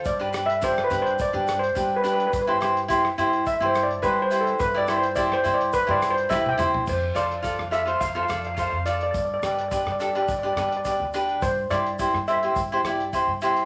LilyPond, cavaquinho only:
\new Staff \with { instrumentName = "Cavaquinho" } { \time 4/4 \key c \major \tempo 4 = 106 r16 <d' g' b'>16 <d' g' b'>16 r16 <d' g' d''>16 r16 <d' g' b'>8 r16 <d' g' b'>8 r16 <d' g' b'>16 r16 <d' g' b'>8 | r16 <e' g' c''>16 <e' g' c''>16 r16 <e' g' c''>16 r16 <e' g' c''>8 r16 <e' g' c''>8 r16 <e' g' c''>16 r16 <e' g' c''>8 | r16 <e' g' d''>16 <e' g' c''>16 r16 <e' g' c''>16 r16 <e' g' c''>8 r16 <e' g' c''>8 r16 <e' g' b'>16 r16 <e' g' c''>8 | r8 <f' a' c''>16 r16 <f' a' d''>16 r16 <f' a' d''>16 <f' a' c''>16 r16 <f' a' c''>16 <f' a' d''>16 r16 <f' a' c''>16 r16 <f' a' d''>8 |
r8 <d' g' b'>16 r16 <d' g' b'>16 r16 <d' g' a'>16 <d' g' b'>16 r16 <d' g' b'>16 <d' g' b'>16 r16 <d' g' b'>16 r16 <d' g' b'>8 | r8 <e' g' c''>16 r16 <e' g' c''>16 r16 <e' g' c''>16 <e' g' c''>16 r16 <e' g' c''>16 <e' g' d''>16 r16 <e' g' c''>16 r16 <e' g' c''>8 | }